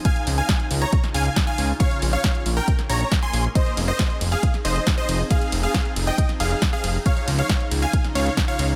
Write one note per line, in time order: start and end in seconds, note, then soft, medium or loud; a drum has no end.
0.00 1.76 D#4 medium
0.05 1.78 C#3 medium
0.05 3.52 C#4 medium
0.05 1.78 F4 medium
0.05 0.27 F5 medium
0.05 0.27 G#5 loud
0.05 kick loud
0.05 closed hi-hat medium
0.16 closed hi-hat soft
0.27 0.41 C#2 loud
0.27 open hi-hat loud
0.38 0.67 F5 medium
0.38 0.67 G#5 loud
0.38 closed hi-hat soft
0.49 kick loud
0.49 snare loud
0.49 closed hi-hat medium
0.60 closed hi-hat soft
0.71 0.85 C#2 medium
0.71 open hi-hat loud
0.82 1.03 C#5 medium
0.82 1.03 A#5 loud
0.93 kick loud
0.93 closed hi-hat medium
1.04 snare soft
1.04 closed hi-hat soft
1.14 1.29 C#2 medium
1.14 1.36 F5 medium
1.14 1.36 G#5 loud
1.14 open hi-hat loud
1.25 closed hi-hat soft
1.36 kick loud
1.36 snare loud
1.36 closed hi-hat medium
1.47 1.69 F5 medium
1.47 1.69 G#5 loud
1.47 closed hi-hat soft
1.58 1.73 C#2 medium
1.58 open hi-hat loud
1.80 3.54 A#3 medium
1.80 7.02 G#4 medium
1.80 2.02 C#5 medium
1.80 2.02 F5 loud
1.80 kick loud
1.80 closed hi-hat medium
1.91 closed hi-hat soft
2.02 2.16 A#1 loud
2.02 open hi-hat loud
2.13 2.42 C#5 medium
2.13 2.42 F5 loud
2.13 closed hi-hat soft
2.24 kick loud
2.24 snare loud
2.24 closed hi-hat medium
2.35 closed hi-hat soft
2.46 2.60 A#1 medium
2.46 open hi-hat loud
2.57 2.78 A#4 medium
2.57 2.78 G5 loud
2.57 closed hi-hat soft
2.68 kick loud
2.68 closed hi-hat medium
2.79 snare soft
2.79 closed hi-hat soft
2.89 3.04 A#1 medium
2.89 3.11 C#5 medium
2.89 3.11 A#5 medium
2.89 open hi-hat loud
3.01 closed hi-hat soft
3.12 kick loud
3.12 snare loud
3.12 closed hi-hat medium
3.23 3.44 G#5 medium
3.23 3.44 C6 loud
3.23 closed hi-hat soft
3.33 3.48 A#1 medium
3.33 open hi-hat loud
3.44 closed hi-hat soft
3.55 7.02 F3 medium
3.55 7.02 C4 medium
3.55 8.76 D#4 medium
3.55 3.77 C5 medium
3.55 3.77 D#5 loud
3.55 kick loud
3.55 closed hi-hat medium
3.66 closed hi-hat soft
3.77 3.91 F1 loud
3.77 open hi-hat loud
3.77 ride medium
3.88 4.17 C5 medium
3.88 4.17 D#5 loud
3.88 closed hi-hat soft
3.99 kick loud
3.99 snare loud
3.99 closed hi-hat medium
4.10 closed hi-hat soft
4.21 4.35 F1 medium
4.21 open hi-hat loud
4.21 ride medium
4.32 4.54 G#4 medium
4.32 4.54 F5 loud
4.32 closed hi-hat soft
4.43 kick loud
4.43 closed hi-hat medium
4.54 snare soft
4.54 closed hi-hat soft
4.65 4.79 F1 medium
4.65 4.86 C5 medium
4.65 4.86 D#5 medium
4.65 open hi-hat loud
4.65 ride medium
4.76 closed hi-hat soft
4.87 kick loud
4.87 snare loud
4.87 closed hi-hat medium
4.98 5.19 C5 medium
4.98 5.19 D#5 loud
4.98 closed hi-hat soft
5.09 5.23 F1 medium
5.09 open hi-hat loud
5.09 ride medium
5.30 5.52 G#4 medium
5.30 5.52 F5 loud
5.30 kick loud
5.30 closed hi-hat medium
5.42 closed hi-hat soft
5.52 5.67 F1 loud
5.52 open hi-hat loud
5.52 ride medium
5.63 5.92 G#4 medium
5.63 5.92 F5 loud
5.63 closed hi-hat soft
5.74 kick loud
5.74 snare loud
5.74 closed hi-hat medium
5.85 closed hi-hat soft
5.96 6.10 F1 medium
5.96 open hi-hat loud
5.96 ride medium
6.07 6.29 D#5 medium
6.07 6.29 G5 loud
6.07 closed hi-hat soft
6.18 kick loud
6.18 closed hi-hat loud
6.29 snare soft
6.29 closed hi-hat soft
6.40 6.54 F1 loud
6.40 6.62 G#4 medium
6.40 6.62 F5 loud
6.40 open hi-hat loud
6.40 ride medium
6.51 closed hi-hat soft
6.62 kick loud
6.62 snare loud
6.62 closed hi-hat loud
6.73 6.95 G#4 medium
6.73 6.95 F5 loud
6.73 closed hi-hat soft
6.84 6.98 F1 medium
6.84 open hi-hat loud
6.84 ride medium
7.06 8.76 C#3 medium
7.06 8.76 C#4 medium
7.06 8.76 F4 medium
7.06 7.27 C#5 medium
7.06 7.27 F5 loud
7.06 kick loud
7.06 closed hi-hat medium
7.17 closed hi-hat soft
7.28 7.42 C#2 loud
7.28 open hi-hat loud
7.28 ride medium
7.39 7.68 C#5 medium
7.39 7.68 F5 loud
7.39 closed hi-hat soft
7.49 kick loud
7.49 snare loud
7.49 closed hi-hat loud
7.60 closed hi-hat soft
7.71 7.86 C#2 medium
7.71 open hi-hat loud
7.71 ride medium
7.82 8.04 F5 medium
7.82 8.04 G#5 loud
7.82 closed hi-hat soft
7.93 kick loud
7.93 closed hi-hat loud
8.04 snare soft
8.04 closed hi-hat soft
8.15 8.29 C#2 medium
8.15 8.37 C#5 medium
8.15 8.37 F5 loud
8.15 open hi-hat loud
8.15 ride medium
8.26 closed hi-hat soft
8.37 kick loud
8.37 snare loud
8.37 closed hi-hat medium
8.48 8.70 C#5 medium
8.48 8.70 F5 medium
8.48 closed hi-hat soft
8.59 8.73 C#2 medium
8.59 open hi-hat loud
8.59 ride medium